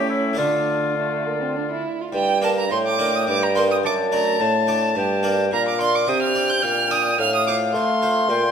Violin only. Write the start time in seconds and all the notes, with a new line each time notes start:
Already playing: C#4
0.38 D4
0.97 A3
1.27 A#3
1.41 C4
1.56 D4
1.70 E4
2.01 F4
2.14 G5
2.44 A5
2.58 A#5
2.72 C6
2.86 D6
3.15 D#6
3.28 D6
3.43 A#5
3.56 C6
3.71 D#6
3.86 D6
4.14 A#5
4.41 A5
5.53 A#5
5.68 D6
5.81 C6
5.95 D6
6.09 D#6
6.22 F6
6.50 G6
6.62 F6
6.91 D#6
7.20 F6
7.35 D#6
7.47 D6
7.74 C6